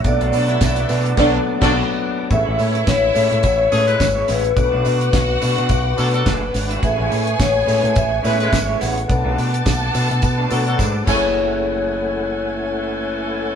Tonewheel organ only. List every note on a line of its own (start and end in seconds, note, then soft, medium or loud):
0.00 2.26 F#5 medium
0.04 2.28 B4 medium
0.04 2.28 A5 medium
0.04 2.28 D6 medium
2.30 11.03 B4 medium
2.30 4.55 E5 medium
2.30 4.54 G#5 medium
2.30 4.54 C#6 medium
4.56 6.80 F#5 medium
4.56 6.80 D6 medium
6.83 9.07 G#5 medium
6.83 9.07 C#6 medium
9.09 11.05 F#5 medium
9.09 11.05 A5 medium
9.09 11.05 D6 medium
11.07 13.55 A3 medium
11.07 13.55 E4 medium
11.07 13.55 F#5 medium
11.07 13.55 G#5 medium